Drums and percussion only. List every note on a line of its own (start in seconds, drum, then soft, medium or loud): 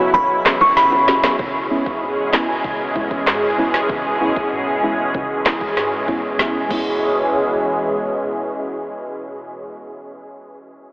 0.14 kick loud
0.14 closed hi-hat medium
0.14 high bongo medium
0.45 kick loud
0.45 snare loud
0.45 clap medium
0.61 kick medium
0.61 high bongo medium
0.77 snare medium
0.77 closed hi-hat medium
0.92 high bongo medium
1.08 snare medium
1.08 low bongo medium
1.24 snare loud
1.39 kick loud
1.86 kick medium
2.33 snare loud
2.33 clap medium
2.64 kick loud
2.96 kick medium
3.11 kick medium
3.27 snare loud
3.27 clap medium
3.74 snare medium
3.89 kick loud
4.36 kick medium
5.14 kick loud
5.46 kick medium
5.46 snare loud
5.46 clap medium
5.61 kick medium
5.77 snare medium
6.08 kick medium
6.39 kick loud
6.39 snare medium
6.70 kick loud
6.70 crash medium